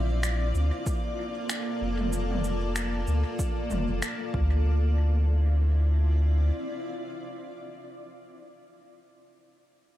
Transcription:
Already playing: sub bass A#1, ambient pad A#3 C4 F4 A4 D5
0.23 finger snap, shaker
0.55 sub bass D2, shaker
0.86 kick, shaker
1.50 finger snap, shaker
1.81 sub bass F1
1.99 mid tom
2.13 shaker
2.31 mid tom
2.44 shaker
2.76 finger snap, shaker
3.07 sub bass D2, shaker
3.39 kick, shaker
3.70 sub bass F1, mid tom, shaker
3.89 sub bass F1
4.02 finger snap, shaker
4.34 sub bass D2, ambient pad C4, kick
4.45 ambient pad E4
4.87 ambient pad F4
4.95 ambient pad D5

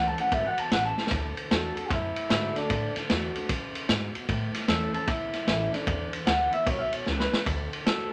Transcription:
Already playing: upright bass C#2, steel-string acoustic guitar A2 E3 A3 C#4 E4
0.07 clean electric guitar A5
0.18 steel-string acoustic guitar C#4 E4, clean electric guitar F#5, ride
0.32 upright bass G#1, steel-string acoustic guitar B2, clean electric guitar E5, kick, ride
0.46 clean electric guitar F#5
0.58 clean electric guitar A5, muted upright bass stroke, ride
0.71 upright bass A1, steel-string acoustic guitar C#3, clean electric guitar F#5, snare, ride
0.85 clean electric guitar A5
0.98 snare
1.07 steel-string acoustic guitar D3, snare
1.11 upright bass D2, kick, ride
1.37 ride
1.51 upright bass E2, steel-string acoustic guitar D3 A3 D4 F#4, clean electric guitar A4, snare, ride
1.76 steel-string acoustic guitar D4 F#4, clean electric guitar A4, muted upright bass stroke, ride
1.90 upright bass F#2, steel-string acoustic guitar A2, clean electric guitar E4, kick, snare, ride
2.16 muted upright bass stroke, ride
2.29 upright bass G#2, steel-string acoustic guitar D3 A3 D4 F#4, clean electric guitar E4, snare, ride
2.56 clean electric guitar D4, muted upright bass stroke, snare, ride
2.70 upright bass A2, steel-string acoustic guitar D3, kick, ride
2.95 muted upright bass stroke, snare, ride
3.09 upright bass E2, steel-string acoustic guitar D3 A3 D4 F#4, snare, ride
3.35 steel-string acoustic guitar D4 F#4, muted upright bass stroke, ride
3.49 steel-string acoustic guitar C#3, kick, snare, ride
3.75 muted upright bass stroke, ride
3.89 upright bass G#2, steel-string acoustic guitar B2, snare, ride
4.15 muted upright bass stroke, ride
4.29 upright bass A2, steel-string acoustic guitar A2, kick, ride
4.54 snare, ride
4.68 upright bass E2, steel-string acoustic guitar E3 A3 C#4 E4, clean electric guitar A4, snare, ride
4.94 steel-string acoustic guitar C#4 E4, clean electric guitar A4, muted upright bass stroke, ride
5.07 steel-string acoustic guitar E2, clean electric guitar E4, kick, snare, ride
5.33 snare, ride
5.47 upright bass A1, steel-string acoustic guitar E3 A3 C#4 E4, clean electric guitar E4, snare, ride
5.72 steel-string acoustic guitar C#4 E4, clean electric guitar D4, snare, ride
5.86 steel-string acoustic guitar E2, upright bass E2, kick, ride
6.13 ride
6.26 upright bass D2, steel-string acoustic guitar D3 G#3 B3 E4, clean electric guitar F#5, snare, ride
6.51 steel-string acoustic guitar B3 E4, clean electric guitar E5, ride
6.65 upright bass B1, steel-string acoustic guitar B2, clean electric guitar C#5, kick, ride
6.79 clean electric guitar E5
6.92 clean electric guitar C#5, muted upright bass stroke, ride
7.06 upright bass C#2, steel-string acoustic guitar C#3, clean electric guitar B4, snare
7.20 clean electric guitar B4, snare
7.32 muted upright bass stroke, snare
7.46 upright bass D2, steel-string acoustic guitar D3, kick, ride
7.72 muted upright bass stroke, ride
7.86 upright bass E2, steel-string acoustic guitar D3 A3 D4 F#4, clean electric guitar A4, snare, ride

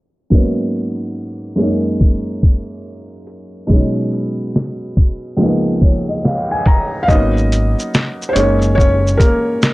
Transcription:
0.30 felt piano G#2 F#3 A#3 B3 C#4 D#4, kick
0.75 closed hi-hat
1.56 felt piano F#2 G#3 A#3, closed hi-hat
1.61 felt piano C#4 D#4
2.01 kick
2.43 kick, closed hi-hat
3.27 closed hi-hat
3.67 felt piano B2 F#3 G#3, kick
3.72 felt piano C#4 D#4
4.13 closed hi-hat
4.56 snare
4.97 kick, closed hi-hat
5.37 felt piano C#2 F3 G#3 A#3
5.42 felt piano B3 D#4
5.82 felt piano C#5, kick, closed hi-hat
6.09 felt piano D#5
6.24 felt piano F5, snare
6.51 felt piano G#5
6.66 felt piano A#5, kick, closed hi-hat
7.03 felt piano F5
7.08 fingered electric bass G#1, felt piano F#3 A#3 B3 C#4 D#4 D#5, kick, shaker
7.37 shaker
7.52 closed hi-hat, shaker
7.79 shaker
7.94 snare, shaker
8.22 shaker
8.29 felt piano C5
8.33 fingered electric bass F#1, felt piano G#3 A#3 C#4 D#4 C#5, closed hi-hat, shaker
8.62 shaker
8.75 felt piano C#4 C#5, kick
8.80 shaker
9.07 shaker
9.17 felt piano A#3 A#4, kick, closed hi-hat, shaker
9.62 snare, shaker

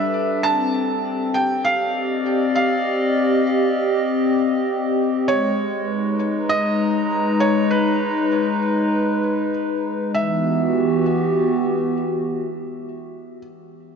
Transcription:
Already playing: analog synth pad G3 D4 A4 B4, felt piano E5
0.43 analog synth pad C4, felt piano A5
1.10 analog synth pad G4
1.34 felt piano G5
1.65 felt piano F5
1.69 analog synth pad D5
1.84 analog synth pad D#5
2.55 felt piano F5
5.28 analog synth pad G#3, felt piano C#5
5.70 analog synth pad B4
5.80 analog synth pad D#4
6.27 analog synth pad A#5
6.49 felt piano D#5
7.40 felt piano C#5
7.71 felt piano B4
10.14 analog synth pad E3, felt piano E5
10.24 analog synth pad B3
10.33 analog synth pad F#4
10.42 analog synth pad G4

